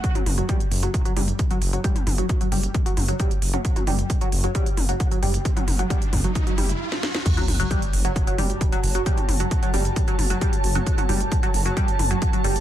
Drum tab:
CC |----------------|----------------|----------------|----------------|
HH |xxoxxxoxxxoxxxox|xxoxxxoxxxoxxxox|xxoxxxoxxxoxxxox|xxoxxxoxxxox----|
SD |----------------|----------------|----------------|-------------ooo|
T2 |-oo-------o-----|-oo-------o----o|-oo-------o-----|-oo---o---o-----|
BD |o---o---o---o---|o---o---o---o---|o---o---o---o---|o---o-o-o-------|

CC |x---------------|----------------|----------------|
HH |xxoxxxoxxxoxxxox|xxoxxxoxxxoxxxox|xxoxxxoxxxoxxxox|
SD |----------------|----------------|----------------|
T2 |-oo-------o-----|-oo---o---o----o|-oo-------o-----|
BD |o---o---o---o---|o---o---o---o---|o---o---o---o---|